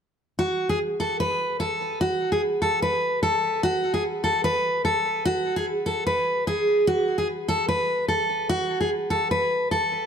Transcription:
0.39 0.67 F#4 medium
0.69 0.78 G#4 medium
1.00 1.18 A4 medium
1.20 1.58 B4 medium
1.60 1.98 A4 medium
2.01 2.29 F#4 loud
2.32 2.41 G#4 medium
2.62 2.80 A4 medium
2.82 3.20 B4 medium
3.23 3.61 A4 medium
3.63 3.92 F#4 loud
3.94 4.03 G#4 medium
4.24 4.42 A4 medium
4.44 4.82 B4 medium
4.85 5.23 A4 medium
5.25 5.54 F#4 loud
5.56 5.65 G#4 medium
5.86 6.04 A4 medium
6.07 6.45 B4 medium
6.47 6.85 G#4 medium
6.87 7.16 F#4 medium
7.18 7.27 G#4 medium
7.48 7.66 A4 medium
7.68 8.07 B4 medium
8.08 8.47 A4 medium
8.49 8.78 F#4 loud
8.80 8.89 G#4 medium
9.10 9.28 A4 medium
9.31 9.69 B4 medium
9.71 10.06 A4 medium

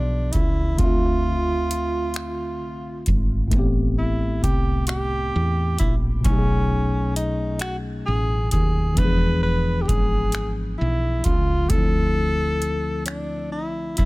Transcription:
0.00 0.30 B1 medium
0.00 0.73 E3 medium
0.00 0.77 F3 medium
0.00 0.74 B3 medium
0.00 0.34 D4 medium
0.00 0.76 D4 medium
0.00 0.79 G#4 medium
0.32 0.76 C#2 medium
0.32 0.79 E4 medium
0.32 kick medium
0.32 closed hi-hat medium
0.75 3.46 D3 medium
0.75 3.47 A3 medium
0.75 3.06 F4 medium
0.75 kick loud
0.75 closed hi-hat medium
0.80 2.63 D2 medium
0.80 3.49 C4 medium
0.80 3.50 E5 medium
0.86 3.51 F4 medium
1.71 closed hi-hat medium
2.14 finger snap medium
2.14 closed hi-hat soft
2.63 3.10 C2 medium
3.06 3.49 G#1 medium
3.06 kick medium
3.06 closed hi-hat medium
3.48 6.18 A2 medium
3.48 6.20 A3 medium
3.48 kick loud
3.48 closed hi-hat medium
3.53 4.39 A1 medium
3.53 6.21 B3 medium
3.53 6.23 C4 medium
3.59 6.24 G4 medium
3.99 4.40 E4 medium
4.43 5.30 C2 medium
4.43 4.86 G4 medium
4.43 kick medium
4.43 closed hi-hat medium
4.87 5.75 G4 loud
4.87 finger snap loud
4.87 closed hi-hat medium
5.36 5.76 E2 medium
5.78 6.22 A#1 medium
5.78 5.95 E4 medium
5.78 kick medium
5.78 closed hi-hat medium
6.21 8.91 B2 medium
6.21 8.93 F#3 medium
6.21 kick loud
6.21 closed hi-hat medium
6.25 8.03 B1 medium
6.25 8.94 A3 medium
6.25 7.12 C#4 medium
6.25 8.95 C#4 medium
6.30 8.96 D#4 medium
6.30 6.35 G4 medium
6.39 9.00 G#4 medium
7.16 7.58 D#4 medium
7.16 closed hi-hat medium
7.59 7.77 F#4 medium
7.59 finger snap loud
7.59 closed hi-hat medium
8.06 8.49 A1 medium
8.06 8.49 G#4 medium
8.51 8.94 D#2 medium
8.51 8.99 G#4 medium
8.51 kick medium
8.51 closed hi-hat medium
8.94 11.64 E3 medium
8.94 11.66 B3 medium
8.94 kick loud
8.94 closed hi-hat medium
8.98 9.85 E1 loud
8.98 11.67 D4 medium
8.98 9.42 B4 loud
9.02 11.68 F3 medium
9.02 11.70 G#4 medium
9.43 9.83 B4 medium
9.81 9.89 G4 medium
9.88 10.75 G#1 medium
9.88 10.52 G#4 medium
9.88 kick medium
9.88 closed hi-hat medium
10.32 finger snap medium
10.32 closed hi-hat soft
10.78 11.22 B1 medium
10.78 11.26 E4 medium
11.24 11.67 C#2 medium
11.24 11.71 F4 medium
11.24 kick medium
11.24 closed hi-hat medium
11.66 14.05 D3 medium
11.66 14.05 A3 medium
11.66 13.05 A4 loud
11.66 kick loud
11.66 closed hi-hat medium
11.71 13.54 D2 medium
11.71 14.05 C4 medium
11.71 14.05 E4 medium
11.77 14.05 F3 medium
12.62 closed hi-hat medium
13.06 13.48 D4 medium
13.06 finger snap medium
13.06 closed hi-hat medium
13.52 14.01 C2 medium
13.52 13.94 E4 medium
13.97 14.05 G#1 medium
13.97 14.05 E4 medium
13.97 kick medium
13.97 closed hi-hat medium

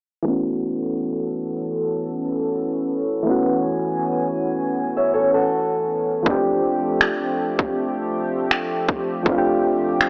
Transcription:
0.23 3.20 E3 medium
0.23 6.22 E3 medium
0.23 3.21 A3 medium
0.23 6.22 B3 medium
0.23 6.22 C#4 medium
0.23 3.23 A4 medium
0.27 3.22 B3 medium
0.27 3.23 C#4 medium
0.31 3.25 F#4 medium
3.23 6.20 E3 medium
3.23 6.21 A3 medium
3.23 6.23 G#5 medium
3.27 6.22 B3 medium
3.27 6.23 C#4 medium
3.31 6.24 F#4 medium
4.97 5.12 C#5 medium
4.97 5.13 E5 medium
5.13 5.33 A4 medium
5.13 5.33 C#5 medium
5.34 6.22 F#4 medium
5.34 6.22 A4 medium
6.23 9.20 F3 medium
6.23 10.09 F3 medium
6.23 9.21 A3 medium
6.23 10.09 A3 medium
6.23 10.09 C4 medium
6.23 10.09 G4 medium
6.23 kick loud
6.27 6.33 B3 medium
6.27 9.23 D4 medium
6.31 9.26 C4 medium
6.31 9.24 G4 medium
7.01 finger snap loud
7.59 kick medium
8.51 finger snap loud
8.89 kick medium
9.23 10.09 F3 medium
9.23 10.09 A3 medium
9.23 kick loud
9.27 10.09 C4 medium
9.27 10.09 D4 medium
9.31 9.36 F4 medium
9.38 10.09 G4 medium
10.01 finger snap loud

